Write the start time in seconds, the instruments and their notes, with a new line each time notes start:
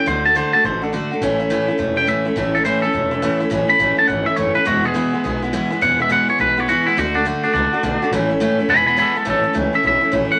0.06 upright bass D2, steel-string acoustic guitar D3 A3 D4 F#4, clean electric guitar C5
0.25 steel-string acoustic guitar A3 D4 F#4, clean electric guitar A5
0.35 steel-string acoustic guitar D3 A3 D4 F#4, clean electric guitar C5
0.53 steel-string acoustic guitar A3 D4 F#4, clean electric guitar A5, muted upright bass stroke
0.64 upright bass A1, steel-string acoustic guitar D3 A3 D4 F#4, clean electric guitar C5
0.82 steel-string acoustic guitar A3 D4 F#4, clean electric guitar A4
0.93 steel-string acoustic guitar D3 A3 D4 F#4
1.11 steel-string acoustic guitar A3 D4 F#4, muted upright bass stroke
1.21 upright bass A1, steel-string acoustic guitar A2 E3 A3 C#4 E4
1.40 steel-string acoustic guitar A3 C#4 E4
1.50 steel-string acoustic guitar A2 E3 A3 C#4 E4
1.68 steel-string acoustic guitar A3 C#4 E4, muted upright bass stroke
1.78 upright bass E1, steel-string acoustic guitar E3 A3 C#4 E4
1.96 steel-string acoustic guitar A3 C#4 E4, clean electric guitar G5
2.07 steel-string acoustic guitar A2 E3 A3 C#4 E4, clean electric guitar E5
2.25 steel-string acoustic guitar A3 C#4 E4, muted upright bass stroke
2.36 upright bass A1, steel-string acoustic guitar A2 E3 A3 C#4 E4
2.55 steel-string acoustic guitar A3 C#4 E4, clean electric guitar A4
2.65 steel-string acoustic guitar A2 E3 A3 C#4 E4, clean electric guitar C5
2.82 steel-string acoustic guitar A3 C#4 E4, clean electric guitar A4, muted upright bass stroke
2.93 upright bass E1, steel-string acoustic guitar E3 A3 C#4 E4
3.11 steel-string acoustic guitar A3 C#4 E4
3.22 steel-string acoustic guitar A2 E3 A3 C#4 E4
3.40 steel-string acoustic guitar A3 C#4 E4, muted upright bass stroke
3.50 upright bass A1, steel-string acoustic guitar A2 E3 A3 C#4 E4
3.69 steel-string acoustic guitar A3 C#4 E4, clean electric guitar B5, muted upright bass stroke
3.79 upright bass A1, steel-string acoustic guitar A2 E3 A3 C#4 E4
3.97 steel-string acoustic guitar A3 C#4 E4, clean electric guitar A5, muted upright bass stroke
4.07 upright bass G#1, steel-string acoustic guitar E3 A3 C#4 E4, clean electric guitar F#5
4.26 steel-string acoustic guitar A3 C#4 E4, clean electric guitar E5, muted upright bass stroke
4.36 upright bass F#1, steel-string acoustic guitar A2 E3 A3 C#4 E4, clean electric guitar C#5
4.55 steel-string acoustic guitar A3 C#4 E4, clean electric guitar B4, muted upright bass stroke
4.65 upright bass E1, steel-string acoustic guitar E2 B2 E3 G#3 B3 E4, clean electric guitar F#4
4.84 steel-string acoustic guitar E3 G#3 B3 E4, clean electric guitar G#4
4.94 steel-string acoustic guitar E2 B2 E3 G#3 B3 E4
5.13 steel-string acoustic guitar E3 G#3 B3 E4, muted upright bass stroke
5.24 upright bass B1, steel-string acoustic guitar E3 G#3 B3 E4
5.42 steel-string acoustic guitar E3 G#3 B3 E4
5.53 steel-string acoustic guitar E2 B2 E3 G#3 B3 E4
5.71 steel-string acoustic guitar E3 G#3 B3 E4, muted upright bass stroke
5.81 upright bass E1, steel-string acoustic guitar E2 B2 E3 G#3 B3 E4, clean electric guitar F#5
5.99 steel-string acoustic guitar E3 G#3 B3 E4, clean electric guitar E5
6.09 steel-string acoustic guitar E2 B2 E3 G#3 B3 E4, clean electric guitar F#5
6.28 steel-string acoustic guitar E3 G#3 B3 E4, clean electric guitar C#5, muted upright bass stroke
6.38 upright bass B1, steel-string acoustic guitar E3 G#3 B3 E4, clean electric guitar B4
6.57 steel-string acoustic guitar E3 G#3 B3 E4, clean electric guitar C#5
6.68 steel-string acoustic guitar E2 B2 E3 G#3 B3 E4, clean electric guitar F#4
6.86 steel-string acoustic guitar E3 G#3 B3 E4, clean electric guitar E4, muted upright bass stroke
6.97 upright bass D2, steel-string acoustic guitar D3 A3 D4 F#4, clean electric guitar F#4
7.14 steel-string acoustic guitar A3 D4 F#4, clean electric guitar D4
7.25 steel-string acoustic guitar D3 A3 D4 F#4
7.43 steel-string acoustic guitar A3 D4 F#4, clean electric guitar D4, muted upright bass stroke
7.53 upright bass C#2, steel-string acoustic guitar D3 A3 D4 F#4, clean electric guitar D4
7.73 steel-string acoustic guitar A3 D4 F#4
7.83 upright bass B1, steel-string acoustic guitar D3 A3 D4 F#4
8.01 steel-string acoustic guitar A3 D4 F#4, muted upright bass stroke
8.11 upright bass A1, steel-string acoustic guitar A2 E3 A3 C#4 E4
8.30 steel-string acoustic guitar A3 C#4 E4
8.40 steel-string acoustic guitar A2 E3 A3 C#4 E4
8.58 steel-string acoustic guitar A3 C#4 E4, muted upright bass stroke
8.68 upright bass E1, steel-string acoustic guitar E3 G#3 B3 E4, clean electric guitar G#5 B5
8.86 steel-string acoustic guitar E3 G#3 B3 E4, clean electric guitar G#5 B5
8.97 steel-string acoustic guitar E2 B2 E3 G#3 B3 E4, clean electric guitar G#5 B5
9.02 clean electric guitar A4
9.15 steel-string acoustic guitar E3 G#3 B3 E4, clean electric guitar A5, muted upright bass stroke
9.25 upright bass A1, steel-string acoustic guitar A2 E3 A3 C#4 E4
9.30 clean electric guitar A4
9.43 steel-string acoustic guitar A3 C#4 E4, muted upright bass stroke
9.53 upright bass C#2, steel-string acoustic guitar A2 E3 A3 C#4 E4
9.73 steel-string acoustic guitar A3 C#4 E4, clean electric guitar E5, muted upright bass stroke
9.83 upright bass B1, steel-string acoustic guitar E3 A3 C#4 E4
9.87 clean electric guitar E5
10.01 steel-string acoustic guitar A3 C#4 E4, muted upright bass stroke
10.11 upright bass A#1, steel-string acoustic guitar A2 E3 A3 C#4 E4
10.31 steel-string acoustic guitar A3 C#4 E4, clean electric guitar F#5, muted upright bass stroke